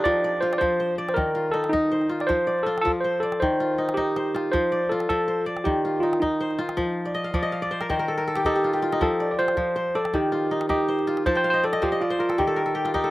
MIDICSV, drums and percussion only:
0, 0, Header, 1, 2, 480
1, 0, Start_track
1, 0, Tempo, 373599
1, 69, Time_signature, 12, 3, 24, 8
1, 16837, End_track
2, 0, Start_track
2, 0, Title_t, "Calabash"
2, 70, Note_on_c, 9, 36, 63
2, 199, Note_off_c, 9, 36, 0
2, 677, Note_on_c, 9, 38, 47
2, 801, Note_on_c, 9, 36, 66
2, 805, Note_off_c, 9, 38, 0
2, 930, Note_off_c, 9, 36, 0
2, 1395, Note_on_c, 9, 38, 46
2, 1512, Note_on_c, 9, 36, 62
2, 1523, Note_off_c, 9, 38, 0
2, 1641, Note_off_c, 9, 36, 0
2, 2106, Note_on_c, 9, 38, 50
2, 2232, Note_on_c, 9, 36, 57
2, 2235, Note_off_c, 9, 38, 0
2, 2361, Note_off_c, 9, 36, 0
2, 2588, Note_on_c, 9, 38, 19
2, 2716, Note_off_c, 9, 38, 0
2, 2718, Note_on_c, 9, 38, 19
2, 2831, Note_off_c, 9, 38, 0
2, 2831, Note_on_c, 9, 38, 43
2, 2954, Note_off_c, 9, 38, 0
2, 2954, Note_on_c, 9, 36, 55
2, 2954, Note_on_c, 9, 38, 18
2, 3082, Note_off_c, 9, 36, 0
2, 3082, Note_off_c, 9, 38, 0
2, 3199, Note_on_c, 9, 38, 19
2, 3324, Note_off_c, 9, 38, 0
2, 3324, Note_on_c, 9, 38, 18
2, 3449, Note_off_c, 9, 38, 0
2, 3449, Note_on_c, 9, 38, 19
2, 3567, Note_off_c, 9, 38, 0
2, 3567, Note_on_c, 9, 38, 47
2, 3686, Note_on_c, 9, 36, 59
2, 3696, Note_off_c, 9, 38, 0
2, 3814, Note_off_c, 9, 36, 0
2, 4268, Note_on_c, 9, 38, 46
2, 4397, Note_off_c, 9, 38, 0
2, 4397, Note_on_c, 9, 36, 60
2, 4526, Note_off_c, 9, 36, 0
2, 4995, Note_on_c, 9, 38, 47
2, 5109, Note_on_c, 9, 36, 36
2, 5124, Note_off_c, 9, 38, 0
2, 5237, Note_off_c, 9, 36, 0
2, 5350, Note_on_c, 9, 38, 43
2, 5478, Note_off_c, 9, 38, 0
2, 5603, Note_on_c, 9, 38, 48
2, 5731, Note_off_c, 9, 38, 0
2, 5834, Note_on_c, 9, 36, 60
2, 5962, Note_off_c, 9, 36, 0
2, 6428, Note_on_c, 9, 38, 46
2, 6548, Note_on_c, 9, 36, 57
2, 6556, Note_off_c, 9, 38, 0
2, 6677, Note_off_c, 9, 36, 0
2, 7151, Note_on_c, 9, 38, 46
2, 7278, Note_on_c, 9, 36, 60
2, 7280, Note_off_c, 9, 38, 0
2, 7407, Note_off_c, 9, 36, 0
2, 7876, Note_on_c, 9, 38, 47
2, 8002, Note_on_c, 9, 36, 58
2, 8005, Note_off_c, 9, 38, 0
2, 8131, Note_off_c, 9, 36, 0
2, 8359, Note_on_c, 9, 38, 19
2, 8470, Note_off_c, 9, 38, 0
2, 8470, Note_on_c, 9, 38, 19
2, 8595, Note_off_c, 9, 38, 0
2, 8595, Note_on_c, 9, 38, 50
2, 8709, Note_on_c, 9, 36, 62
2, 8724, Note_off_c, 9, 38, 0
2, 8838, Note_off_c, 9, 36, 0
2, 9428, Note_on_c, 9, 36, 68
2, 9556, Note_off_c, 9, 36, 0
2, 10030, Note_on_c, 9, 38, 47
2, 10148, Note_on_c, 9, 36, 69
2, 10158, Note_off_c, 9, 38, 0
2, 10276, Note_off_c, 9, 36, 0
2, 10735, Note_on_c, 9, 38, 50
2, 10854, Note_on_c, 9, 36, 65
2, 10863, Note_off_c, 9, 38, 0
2, 10983, Note_off_c, 9, 36, 0
2, 11218, Note_on_c, 9, 38, 21
2, 11344, Note_off_c, 9, 38, 0
2, 11344, Note_on_c, 9, 38, 21
2, 11466, Note_off_c, 9, 38, 0
2, 11466, Note_on_c, 9, 38, 50
2, 11584, Note_on_c, 9, 36, 66
2, 11595, Note_off_c, 9, 38, 0
2, 11713, Note_off_c, 9, 36, 0
2, 12183, Note_on_c, 9, 38, 55
2, 12296, Note_on_c, 9, 36, 69
2, 12312, Note_off_c, 9, 38, 0
2, 12424, Note_off_c, 9, 36, 0
2, 12914, Note_on_c, 9, 38, 55
2, 13023, Note_on_c, 9, 36, 67
2, 13043, Note_off_c, 9, 38, 0
2, 13151, Note_off_c, 9, 36, 0
2, 13630, Note_on_c, 9, 38, 56
2, 13746, Note_on_c, 9, 36, 64
2, 13759, Note_off_c, 9, 38, 0
2, 13875, Note_off_c, 9, 36, 0
2, 14119, Note_on_c, 9, 38, 21
2, 14232, Note_off_c, 9, 38, 0
2, 14232, Note_on_c, 9, 38, 20
2, 14353, Note_off_c, 9, 38, 0
2, 14353, Note_on_c, 9, 38, 48
2, 14470, Note_on_c, 9, 36, 67
2, 14481, Note_off_c, 9, 38, 0
2, 14599, Note_off_c, 9, 36, 0
2, 14953, Note_on_c, 9, 38, 22
2, 15072, Note_off_c, 9, 38, 0
2, 15072, Note_on_c, 9, 38, 56
2, 15195, Note_on_c, 9, 36, 72
2, 15200, Note_off_c, 9, 38, 0
2, 15323, Note_off_c, 9, 36, 0
2, 15800, Note_on_c, 9, 38, 48
2, 15919, Note_on_c, 9, 36, 65
2, 15928, Note_off_c, 9, 38, 0
2, 16048, Note_off_c, 9, 36, 0
2, 16154, Note_on_c, 9, 38, 18
2, 16283, Note_off_c, 9, 38, 0
2, 16518, Note_on_c, 9, 38, 50
2, 16636, Note_on_c, 9, 36, 58
2, 16646, Note_off_c, 9, 38, 0
2, 16765, Note_off_c, 9, 36, 0
2, 16837, End_track
0, 0, End_of_file